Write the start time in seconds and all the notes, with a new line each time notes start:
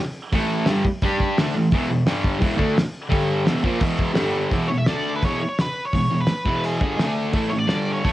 0.33 A2 E3 A3, kick, open hi-hat
0.66 G2 D3 G3, snare, open hi-hat
0.85 muted distorted electric guitar stroke, kick
1.02 G3 D4 G4, kick, open hi-hat
1.20 kick
1.37 D3 A3 D4, snare, open hi-hat
1.55 A2 E3
1.71 E2 B2 E3, kick, open hi-hat
1.90 E2 B2
2.06 G2 D3 G3, snare, open hi-hat
2.24 kick
2.40 E2 B2 E3, kick, open hi-hat
2.57 D3 A3 D4, kick
2.78 muted distorted electric guitar stroke, snare, open hi-hat
3.09 G2 D3 G3, kick, open hi-hat
3.46 E2 B2 E3, snare, open hi-hat
3.63 A#2 F3 A#3, kick
3.80 E2 B2 E3, kick, open hi-hat
3.99 kick
4.15 G2 D3 G3, snare, open hi-hat
4.51 E2 B2 E3, kick, open hi-hat
4.68 E2 B2 C#5
4.78 E5
4.86 D3 A3 D4 D5, snare, open hi-hat
5.16 B4
5.23 E2 B2 E3 C#5, kick, open hi-hat
5.49 C#5
5.59 B4, snare, open hi-hat
5.85 C#5
5.93 E2 B2, kick, open hi-hat
6.10 E2 B2
6.20 B4
6.27 muted distorted electric guitar stroke, snare, open hi-hat
6.45 E2 B2 E3, kick
6.56 B4
6.64 G#4, open hi-hat
6.81 G2 D3 G3, kick
6.98 D3 A3 D4, snare, open hi-hat
7.33 A2 E3 A3, kick, open hi-hat
7.50 A2 E3 C#5
7.58 D5
7.67 G2 D3 G3, snare, open hi-hat
7.93 C#5
8.04 A2 E3 A3, kick, open hi-hat